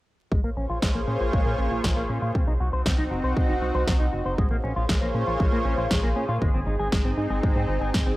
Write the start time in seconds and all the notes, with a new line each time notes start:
0.31 A#1 G#3 A#3 F4 G#4 C5 C#5, kick
0.44 A#1 A#3
0.57 A#1 C#4
0.69 A#1 F4
0.82 A#1 G#3, kick, snare
0.95 A#1 A#3
1.08 A#2 C#4
1.20 A#1 F4
1.33 A#1 G#3, kick
1.46 A#2 A#3
1.58 A#1 C#4
1.71 A#1 F4
1.84 A#1 G#3, kick, snare
1.97 A#1 A#3
2.09 A#2 C#4
2.22 A#2 F4
2.35 C2 C4 D#4 F#4, kick
2.48 C2 D#4
2.60 C2 F#4
2.73 C2 C5
2.86 C2 C4, kick, snare
2.98 C2 D#4
3.11 F#1 F#4
3.24 C2 C5
3.36 C2 C4, kick
3.49 F#1 D#4
3.62 C2 F#4
3.75 C2 C5
3.87 C2 C4, kick, snare
4.00 C2 D#4
4.13 F#1 F#4
4.25 F#1 C5
4.38 A#1 G#3 A#3 F4 G#4 C5 C#5, kick
4.51 A#1 A#3
4.64 A#1 C#4
4.76 A#1 F4
4.89 A#1 G#3, kick, snare
5.02 A#1 A#3
5.14 A#2 C#4
5.27 A#1 F4
5.40 A#1 G#3, kick
5.52 A#2 A#3
5.65 A#1 C#4
5.78 A#1 F4
5.91 A#1 G#3, kick, snare
6.03 A#1 A#3
6.16 A#2 C#4
6.29 A#2 F4
6.41 G#1 G#3 C4 D#4, kick
6.54 G#1 C4
6.67 G#1 D#4
6.79 G#1 G#4
6.92 G#1 G#3, kick, snare
7.05 G#1 C4
7.18 G#2 D#4
7.30 G#1 G#4
7.43 G#1 G#3, kick
7.56 G#2 C4
7.69 G#1 D#4
7.81 G#1 G#4
7.94 G#1 G#3, kick, snare
8.07 G#1 C4